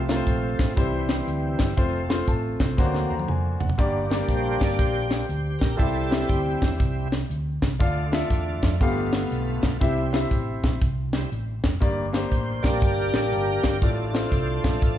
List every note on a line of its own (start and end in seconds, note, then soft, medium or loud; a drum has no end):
0.00 0.20 C2 medium
0.00 0.55 C3 medium
0.00 0.73 F3 medium
0.00 0.74 A3 soft
0.00 0.74 C4 medium
0.09 0.74 A3 medium
0.09 0.74 C4 medium
0.09 0.74 F4 medium
0.09 0.14 A#4 medium
0.09 snare loud
0.09 closed hi-hat medium
0.16 0.76 C5 loud
0.27 0.54 A#1 medium
0.27 kick medium
0.27 closed hi-hat medium
0.59 0.75 A1 medium
0.59 kick medium
0.59 snare loud
0.59 closed hi-hat medium
0.76 1.20 C2 loud
0.76 1.55 C3 medium
0.76 1.74 E3 medium
0.76 1.63 G3 medium
0.76 1.74 G3 soft
0.76 1.63 C4 medium
0.76 1.74 C4 medium
0.76 1.63 E4 medium
0.76 1.63 C5 loud
0.76 kick loud
0.76 closed hi-hat medium
1.09 snare loud
1.09 closed hi-hat medium
1.27 1.55 D2 medium
1.27 closed hi-hat medium
1.59 1.75 G1 medium
1.59 kick medium
1.59 snare loud
1.59 closed hi-hat medium
1.77 2.20 F1 loud
1.77 2.15 F3 soft
1.77 2.00 A3 medium
1.77 2.15 A3 soft
1.77 2.00 C4 medium
1.77 2.16 C4 medium
1.77 2.00 F4 medium
1.77 2.00 C5 medium
1.77 kick loud
1.77 closed hi-hat medium
2.09 2.74 A3 medium
2.09 2.75 C4 medium
2.09 2.75 F4 medium
2.09 2.28 C5 medium
2.09 snare loud
2.09 closed hi-hat medium
2.28 2.55 A1 medium
2.28 2.58 A5 medium
2.28 kick medium
2.28 closed hi-hat medium
2.60 2.76 C2 medium
2.60 2.77 C5 medium
2.60 kick medium
2.60 snare loud
2.60 closed hi-hat medium
2.77 3.05 D2 medium
2.77 3.56 D3 medium
2.77 3.15 F#3 medium
2.77 3.64 A#3 medium
2.77 3.16 A#3 medium
2.77 3.16 C4 medium
2.77 3.64 D4 medium
2.77 3.64 F#4 medium
2.77 3.64 C5 medium
2.77 kick loud
2.77 snare soft
2.94 snare medium
3.10 3.26 D#2 medium
3.10 3.27 A#5 medium
3.19 high tom medium
3.28 3.56 F2 medium
3.28 3.59 G#5 medium
3.28 mid tom medium
3.60 3.76 F1 medium
3.60 4.08 F#5 medium
3.60 floor tom medium
3.69 floor tom medium
3.78 4.21 G1 loud
3.78 4.57 G2 medium
3.78 5.08 G3 medium
3.78 4.01 A#3 medium
3.78 5.08 A#3 soft
3.78 4.01 D4 medium
3.78 5.09 D4 medium
3.78 4.01 G4 medium
3.78 4.01 D5 medium
3.78 kick loud
3.78 closed hi-hat medium
4.10 4.76 A#3 medium
4.10 4.76 D4 medium
4.10 4.76 G4 medium
4.10 4.76 D5 medium
4.10 snare loud
4.10 closed hi-hat medium
4.29 4.56 A#1 medium
4.29 4.62 C5 loud
4.29 kick medium
4.29 closed hi-hat medium
4.60 4.77 G1 medium
4.60 4.79 D5 loud
4.60 kick medium
4.60 snare medium
4.60 closed hi-hat medium
4.79 5.22 A#1 medium
4.79 5.76 G4 medium
4.79 5.64 C5 loud
4.79 kick loud
4.79 closed hi-hat medium
5.09 5.26 G3 soft
5.09 5.27 A#3 soft
5.09 5.27 D4 medium
5.09 snare medium
5.09 closed hi-hat medium
5.29 5.56 D2 medium
5.29 closed hi-hat medium
5.59 5.77 A#1 medium
5.59 5.79 A#4 medium
5.59 kick medium
5.59 snare loud
5.59 closed hi-hat medium
5.76 6.22 C2 medium
5.76 6.58 C3 medium
5.76 6.60 G3 medium
5.76 6.60 C4 medium
5.76 6.01 C4 medium
5.76 6.59 E4 medium
5.76 6.02 E4 medium
5.76 6.02 G4 medium
5.76 6.30 A4 medium
5.76 kick loud
5.76 closed hi-hat medium
5.80 6.02 E5 medium
6.10 6.76 C4 medium
6.10 6.76 E4 medium
6.10 6.76 G4 medium
6.10 6.77 E5 medium
6.10 snare loud
6.10 closed hi-hat medium
6.28 6.57 D2 medium
6.28 6.62 G4 medium
6.28 kick medium
6.28 closed hi-hat medium
6.60 6.77 E2 medium
6.60 6.77 G3 medium
6.60 6.78 C4 medium
6.60 6.78 E4 medium
6.60 kick medium
6.60 snare loud
6.60 closed hi-hat medium
6.78 7.23 C2 medium
6.78 7.08 G3 soft
6.78 7.08 C4 soft
6.78 7.09 E4 medium
6.78 kick loud
6.78 closed hi-hat medium
7.12 snare loud
7.12 closed hi-hat medium
7.30 7.57 D2 medium
7.30 closed hi-hat medium
7.62 7.78 C2 medium
7.62 kick medium
7.62 snare loud
7.62 closed hi-hat medium
7.79 8.23 D2 loud
7.79 8.58 D3 medium
7.79 8.76 A3 soft
7.79 8.02 D4 medium
7.79 8.77 D4 soft
7.79 8.03 F4 medium
7.79 8.77 F4 medium
7.79 8.03 A4 medium
7.79 8.03 F5 medium
7.79 kick loud
7.79 closed hi-hat medium
8.11 8.77 D4 medium
8.11 8.77 F4 medium
8.11 8.77 A4 medium
8.11 8.78 E5 medium
8.11 snare loud
8.11 closed hi-hat medium
8.30 8.58 E2 medium
8.30 kick medium
8.30 closed hi-hat medium
8.63 8.78 F2 medium
8.63 kick medium
8.63 snare medium
8.63 closed hi-hat medium
8.81 9.23 G1 loud
8.81 9.59 G2 medium
8.81 9.77 A3 medium
8.81 9.66 B3 medium
8.81 9.77 B3 soft
8.81 9.78 F4 medium
8.81 9.67 G4 medium
8.81 9.67 A4 medium
8.81 9.67 F5 medium
8.81 kick medium
8.81 closed hi-hat medium
9.13 snare loud
9.13 closed hi-hat medium
9.31 9.58 B1 medium
9.31 closed hi-hat medium
9.63 9.79 B1 medium
9.63 kick medium
9.63 snare loud
9.63 closed hi-hat medium
9.80 10.24 C2 medium
9.80 10.59 C3 medium
9.80 10.19 G3 medium
9.80 10.03 C4 medium
9.80 10.19 C4 soft
9.80 10.04 E4 medium
9.80 10.19 E4 medium
9.80 10.04 G4 medium
9.80 10.04 E5 medium
9.80 kick loud
9.80 closed hi-hat medium
10.13 10.78 C4 medium
10.13 10.78 E4 medium
10.13 10.78 G4 medium
10.13 10.79 E5 medium
10.13 snare loud
10.13 closed hi-hat medium
10.31 10.58 A1 medium
10.31 kick medium
10.31 closed hi-hat medium
10.63 10.79 A#1 medium
10.63 kick medium
10.63 snare loud
10.63 closed hi-hat medium
10.81 11.24 C2 medium
10.81 kick loud
10.81 closed hi-hat medium
11.13 11.30 G3 soft
11.13 11.30 C4 soft
11.13 11.30 E4 soft
11.13 snare loud
11.13 closed hi-hat medium
11.32 11.59 A1 medium
11.32 closed hi-hat medium
11.64 11.79 F1 medium
11.64 kick medium
11.64 snare loud
11.64 closed hi-hat medium
11.80 12.24 G1 loud
11.80 12.60 G2 medium
11.80 12.03 A#3 medium
11.80 12.04 D4 medium
11.80 12.04 G4 medium
11.80 12.04 D5 medium
11.80 kick loud
11.80 closed hi-hat medium
12.13 12.78 A#3 medium
12.13 12.78 D4 medium
12.13 12.78 G4 medium
12.13 12.79 C5 medium
12.13 snare loud
12.13 closed hi-hat medium
12.31 12.59 A1 medium
12.31 12.64 C5 loud
12.31 kick medium
12.31 closed hi-hat medium
12.62 12.79 A#1 medium
12.62 13.77 G3 medium
12.62 13.78 A#3 soft
12.62 13.31 D4 medium
12.62 13.31 G4 medium
12.62 13.31 A#4 medium
12.62 13.34 D5 loud
12.62 kick medium
12.62 snare medium
12.62 closed hi-hat medium
12.82 13.09 G1 medium
12.82 kick loud
12.82 closed hi-hat medium
13.13 13.29 A1 medium
13.13 snare loud
13.13 closed hi-hat medium
13.31 13.59 G1 medium
13.31 13.79 D4 medium
13.31 13.79 G4 medium
13.31 13.84 A#4 medium
13.31 closed hi-hat medium
13.63 13.79 G1 medium
13.63 kick medium
13.63 snare loud
13.63 closed hi-hat medium
13.81 14.25 A1 loud
13.81 14.60 A2 medium
13.81 14.04 A3 medium
13.81 14.04 D4 medium
13.81 14.64 D4 medium
13.81 14.05 F4 medium
13.81 14.32 F4 medium
13.81 14.31 A4 medium
13.81 14.05 D5 medium
13.81 kick loud
13.81 closed hi-hat medium
14.13 14.78 A3 medium
14.13 14.79 D4 medium
14.13 14.79 F4 medium
14.13 14.79 C5 medium
14.13 snare loud
14.13 closed hi-hat medium
14.32 14.59 C2 medium
14.32 14.98 F4 medium
14.32 14.98 A4 medium
14.32 14.79 C5 medium
14.32 kick medium
14.32 closed hi-hat medium
14.64 14.80 A#1 medium
14.64 14.98 F3 medium
14.64 14.98 A3 medium
14.64 14.98 D4 medium
14.64 kick medium
14.64 snare loud
14.64 closed hi-hat medium
14.82 14.98 A1 medium
14.82 kick loud
14.82 closed hi-hat medium